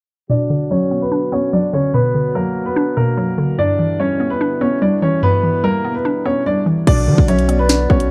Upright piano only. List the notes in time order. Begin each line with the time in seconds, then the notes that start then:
0.30 D4 D5
0.71 C#4 C#5
1.02 B3 B4
1.33 C#4 C#5
1.53 D4 D5
1.74 C#4 C#5
1.94 B3 B4
2.35 A#3 A#4
2.66 B3 B4
2.97 A#3 A#4
3.59 D4 D5
4.00 C#4 C#5
4.30 B3 B4
4.61 C#4 C#5
4.82 D4 D5
5.02 C#4 C#5
5.23 B3 B4
5.64 A#3 A#4
5.95 B3 B4
6.26 C#4 C#5
6.46 D4 D5
6.87 D4 D5
7.28 C#4 C#5
7.59 B3 B4
7.90 C#4 C#5